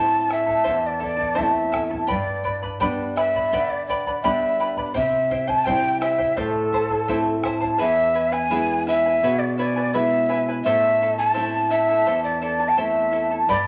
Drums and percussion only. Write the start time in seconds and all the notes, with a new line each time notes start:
0.31 bombo rim
0.48 bombo low
0.66 bombo low
1.02 bombo low
1.21 bombo low
1.38 bombo low
1.74 bombo rim, bombo low
1.92 bombo low
2.10 bombo low
2.45 bombo low
2.63 bombo low
2.81 bombo low
3.17 bombo rim
3.35 bombo low
3.53 bombo low
3.89 bombo low
4.06 bombo low
4.25 bombo low
4.77 bombo low
4.95 bombo low
5.31 bombo low
5.49 bombo low
5.67 bombo low
6.02 bombo rim
6.19 bombo low
6.37 bombo low
6.72 bombo low
6.90 bombo low
7.08 bombo low
7.44 bombo rim, bombo low
7.62 bombo low
13.49 bombo low